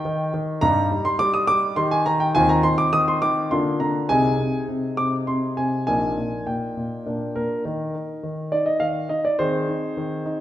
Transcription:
Already playing: D#4 G4 G5
0.05 D#3
0.34 D#3
0.61 G2 G3 D#4 G4 A#5
0.91 G3
1.05 C6
1.19 G3 D6
1.34 D#6
1.47 G3 D6
1.76 D#3 D#4 G4 C6
1.91 G#5
2.06 D#3 A#5
2.20 G5
2.35 D#2 D#3 C4 F4 G#5
2.49 A#5
2.63 D#3 C6
2.78 D6
2.93 D#3 D#6
3.08 C6
3.22 D#3 D6
3.51 D3 A#3 F4 C6
3.80 D3 A#5
4.09 C2 C3 D#4 G#4 G#5
4.39 C3
4.68 C3
4.97 C3 D6
5.27 C3 C6
5.57 C3 G#5
5.87 A#1 A#2 D#4 A#4 G#5
6.18 A#2
6.47 A#2 G5
6.77 A#2
7.06 A#2 D4 A#4
7.36 A#2 A#4
7.65 D#3 D#4 A#4
7.95 D#4
8.23 D#3
8.52 D#4 D5
8.66 D#5
8.80 D#3 F5
9.09 D#4 D#5
9.25 D5
9.39 D#3 C4 G#4 C5
9.68 D#4
9.97 D#3
10.26 D#4

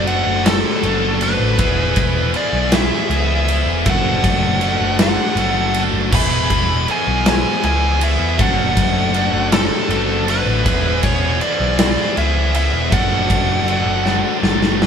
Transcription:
Already playing: F#1 F#3 A3 D4 A4
0.06 F#3 A3 D4 A4 F#5, ride
0.27 F#1
0.44 F#3 A3 D4 A4, snare, ride
0.83 F#1 F#3 A3 D4 A4, ride
1.20 A3 D4 A4 B4, ride
1.40 A1
1.58 E1 E3 B3 E4 G#4, kick, ride
1.96 E1 B3 E4 G#4, kick, ride
2.34 E3 B3 E4 G#4 D5, ride
2.53 B1
2.72 B3 E4 G#4 E5, snare, ride
2.76 E3
3.08 C#2 E3 B3 E4 G#4, ride
3.47 B3 E4 G#4, ride
3.66 E1
3.86 F#1 F#3 A3 D4 A4 F#5, kick, ride
4.23 F#1 A3 D4 A4, kick, ride
4.61 F#3 A3 D4 A4, ride
4.81 F#1
4.98 A3 D4 A4 F#5, snare, ride
5.02 F#3
5.36 F#1 F#3 A3 D4 A4, ride
5.74 A3 D4 A4, ride
5.94 F#1
6.11 E1 E3 B3 E4 G#4, kick, crash
6.15 B5
6.50 E1 B3 E4 G#4, kick, ride
6.88 E3 B3 E4 G#4 G#5, ride
7.08 B1
7.25 E3 B3 E4 G#4 G#5, snare, ride
7.62 C#2 E3 B3 E4 G#4 G#5, ride
7.99 B3 E4 G#4, ride
8.04 E5
8.20 E2
8.38 F#1 F#3 A3 D4 A4 F#5, kick, ride
8.76 F#1 A3 D4 A4, kick, ride
9.12 F#3 A3 D4 A4, ride
9.34 F#1
9.51 F#3 A3 D4 A4, snare, ride
9.89 F#1 F#3 A3 D4 A4, ride
10.27 A3 D4 A4 B4, ride
10.47 A1
10.64 E1 E3 B3 E4 G#4, kick, ride
11.02 E1 B3 E4 G#4 C#5, kick, ride
11.41 E3 B3 E4 G#4 D5, ride
11.60 B1
11.78 E3 B3 E4 G#4, snare, ride
12.14 C#2 E3 B3 E4 G#4 E5, ride
12.52 B3 E4 G#4 E5, ride
12.74 E1
12.90 F#1 F#3 A3 D4 A4 F#5, kick, ride
13.27 F#1 A3 D4 A4, kick, ride
13.64 F#3 A3 D4 A4, ride
13.86 F#1
14.02 F#3 A3 D4 A4, snare
14.40 F#1 F#3 A3 D4 A4, snare
14.62 snare
14.77 A3 D4 A4
14.82 snare

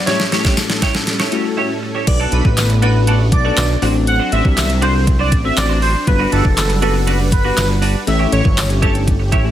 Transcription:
Already playing: G3
0.06 A2 A3 C#4 E4 G4 A4 C#5, snare, closed hi-hat
0.20 snare
0.32 A3 C#4 E4 G4 C#5, snare, closed hi-hat
0.45 E4 G4 C#5, kick, snare
0.57 muted clean electric guitar stroke, snare, closed hi-hat, tambourine
0.70 muted clean electric guitar stroke, snare, closed hi-hat
0.82 E4 G4 C#5, kick, snare, closed hi-hat
0.95 muted clean electric guitar stroke, snare
1.07 muted clean electric guitar stroke, snare, closed hi-hat
1.20 E4 G4 C#5, snare
1.32 A3 C#4 E4 F#4 G4 C#5, closed hi-hat
1.45 muted clean electric guitar stroke
1.57 E4 G4 C#5
1.70 muted clean electric guitar stroke
1.82 muted clean electric guitar stroke
1.95 E4 G4 C#5
2.07 B1 A3 B3 D4 F#4 A4 B4 D5, muted clean electric guitar stroke, kick, closed hi-hat, crash
2.20 F#4 A4 D5
2.32 B1 F#4 A4 B4 D5, closed hi-hat
2.45 A1, muted clean electric guitar stroke, kick
2.57 snare, clap, closed hi-hat, tambourine
2.70 muted clean electric guitar stroke, closed hi-hat
2.82 B3 D4 F#4 A4 B4 D5, closed hi-hat
2.95 muted clean electric guitar stroke
3.07 F#4 A4 D5, closed hi-hat
3.20 muted clean electric guitar stroke
3.32 B1 D5, muted clean electric guitar stroke, kick, closed hi-hat
3.44 B3 D4 F#4 A4 B4 D5
3.57 B1, snare, clap, closed hi-hat, tambourine
3.70 muted clean electric guitar stroke
3.82 A1 F#3 C4 D4 F#4 A4 C5, open hi-hat
3.95 muted clean electric guitar stroke
4.07 F#5, muted clean electric guitar stroke, closed hi-hat
4.20 D4 F#4 C5
4.32 A1 D4 F#4 C5 E5, closed hi-hat
4.45 C2, muted clean electric guitar stroke, kick
4.57 muted clean electric guitar stroke, snare, clap, closed hi-hat, tambourine
4.70 muted clean electric guitar stroke, closed hi-hat
4.82 C4 D4 F#4 A4 C5, closed hi-hat
4.94 muted clean electric guitar stroke
5.07 muted clean electric guitar stroke, kick, closed hi-hat
5.19 D4 F#4 C5 D5
5.32 A1, muted clean electric guitar stroke, kick, closed hi-hat
5.44 C4 D4 F#4 A4 C5 E5, muted clean electric guitar stroke
5.57 A1 D5, muted clean electric guitar stroke, snare, clap, closed hi-hat, tambourine
5.69 D4 F#4 C5
5.82 D4 F#4 C5, open hi-hat
5.94 muted clean electric guitar stroke
6.07 G1 G3 B3 D4 F#4 G4 B4, muted clean electric guitar stroke, kick, closed hi-hat
6.19 D4 F#4 B4
6.32 G1 D4 F#4 A4 B4, closed hi-hat
6.44 F#1, muted clean electric guitar stroke, kick
6.57 snare, clap, closed hi-hat, tambourine
6.69 muted clean electric guitar stroke, closed hi-hat
6.82 B3 D4 F#4 G4 A4 B4, closed hi-hat
6.94 muted clean electric guitar stroke
7.07 D4 F#4 B4, closed hi-hat
7.19 muted clean electric guitar stroke
7.32 G1 B4, muted clean electric guitar stroke, kick, closed hi-hat
7.44 B3 D4 F#4 G4 B4
7.57 G1, snare, clap, closed hi-hat, tambourine
7.69 muted clean electric guitar stroke
7.82 D4 F#4 B4, open hi-hat
7.94 muted clean electric guitar stroke
8.07 A1 A3 C#4 E4 G4 A4 E5, muted clean electric guitar stroke, closed hi-hat
8.19 E4 G4 C#5
8.32 A1 E4 G4 C#5, closed hi-hat
8.44 G1, muted clean electric guitar stroke, kick
8.57 muted clean electric guitar stroke, snare, clap, closed hi-hat, tambourine
8.70 muted clean electric guitar stroke, closed hi-hat
8.82 A3 C#4 E4 G4 A4 C#5, kick, closed hi-hat
8.95 muted clean electric guitar stroke, closed hi-hat
9.07 muted clean electric guitar stroke, kick, closed hi-hat
9.20 muted clean electric guitar stroke
9.32 A1 E4 G4 C#5, kick, closed hi-hat
9.44 A3 C#4 E4 G4 A4, muted clean electric guitar stroke

